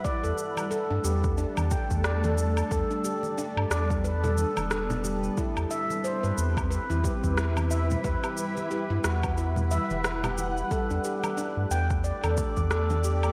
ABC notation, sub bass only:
X:1
M:4/4
L:1/16
Q:"Swing 16ths" 1/4=90
K:Dmix
V:1 name="Sub bass" clef=bass
z E,, z3 G,, E,,2 z E,, z E,,4 z | E,, z4 G,, E,,4 z E,,,4 z | z E,, z3 G,, E,,2 z E,, z E,,4 z | E,, z4 G,, E,,4 z E,,,4 z |
z E,, z3 G,, E,,2 z E,, z E,,4 z |]